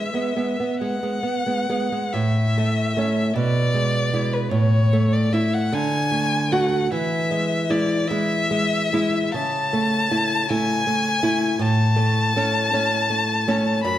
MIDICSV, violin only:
0, 0, Header, 1, 2, 480
1, 0, Start_track
1, 0, Key_signature, 3, "major"
1, 0, Tempo, 887574
1, 1155, Time_signature, 6, 3, 24, 8
1, 1155, Tempo, 800000
1, 3555, Tempo, 784314
1, 4995, Tempo, 847458
1, 5475, Tempo, 765306
1, 6435, Tempo, 744417
1, 8445, End_track
2, 0, Start_track
2, 0, Title_t, "Violin"
2, 0, Program_c, 0, 40
2, 0, Note_on_c, 0, 76, 71
2, 427, Note_off_c, 0, 76, 0
2, 431, Note_on_c, 0, 78, 80
2, 1154, Note_on_c, 0, 76, 76
2, 1163, Note_off_c, 0, 78, 0
2, 1878, Note_on_c, 0, 74, 99
2, 1887, Note_off_c, 0, 76, 0
2, 2474, Note_on_c, 0, 71, 72
2, 2483, Note_off_c, 0, 74, 0
2, 2582, Note_off_c, 0, 71, 0
2, 2586, Note_on_c, 0, 73, 91
2, 2953, Note_on_c, 0, 74, 75
2, 2962, Note_off_c, 0, 73, 0
2, 3072, Note_on_c, 0, 76, 81
2, 3081, Note_off_c, 0, 74, 0
2, 3195, Note_on_c, 0, 78, 85
2, 3204, Note_off_c, 0, 76, 0
2, 3314, Note_on_c, 0, 80, 110
2, 3323, Note_off_c, 0, 78, 0
2, 3792, Note_on_c, 0, 78, 86
2, 3801, Note_off_c, 0, 80, 0
2, 4034, Note_off_c, 0, 78, 0
2, 4041, Note_on_c, 0, 76, 92
2, 4519, Note_on_c, 0, 74, 93
2, 4528, Note_off_c, 0, 76, 0
2, 4744, Note_on_c, 0, 76, 108
2, 4753, Note_off_c, 0, 74, 0
2, 5473, Note_off_c, 0, 76, 0
2, 5477, Note_on_c, 0, 81, 113
2, 6199, Note_on_c, 0, 80, 127
2, 6208, Note_off_c, 0, 81, 0
2, 6916, Note_on_c, 0, 81, 116
2, 6925, Note_off_c, 0, 80, 0
2, 8347, Note_off_c, 0, 81, 0
2, 8351, Note_on_c, 0, 83, 127
2, 8445, Note_off_c, 0, 83, 0
2, 8445, End_track
0, 0, End_of_file